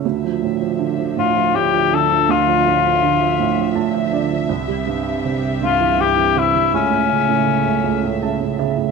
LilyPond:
<<
  \new Staff \with { instrumentName = "Cor anglais" } { \time 6/8 \key d \minor \tempo 4. = 54 r4. f'8 g'8 a'8 | f'2 r4 | r4. f'8 g'8 e'8 | cis'2 r4 | }
  \new Staff \with { instrumentName = "String section" } { \clef bass \time 6/8 \key d \minor << { e''2.~ | e''2.~ | e''2.~ | e''2. | } \\ { <d, d f>2.~ | <d, d f>2. | <c, c g>2. | <cis, cis a>2. | } >> }
  \new Staff \with { instrumentName = "Upright piano" } { \time 6/8 \key d \minor r2. | r2 a''16 e''16 d''8 | r2. | r2 a''8 e''8 | }
  \new Staff \with { instrumentName = "Upright piano" } { \clef bass \time 6/8 \key d \minor d,16 f16 a,16 f16 d16 f16 a,16 f16 a,16 f16 d16 f16 | d,16 f16 a,16 f16 d16 f16 a,16 f16 a,16 f16 d16 f16 | c,16 g16 g,8 c8 g,16 e16 g,16 e16 c16 e16 | cis,16 a,16 cis16 a,16 cis16 a,16 cis,16 a,16 cis16 a,16 cis16 a,16 | }
>>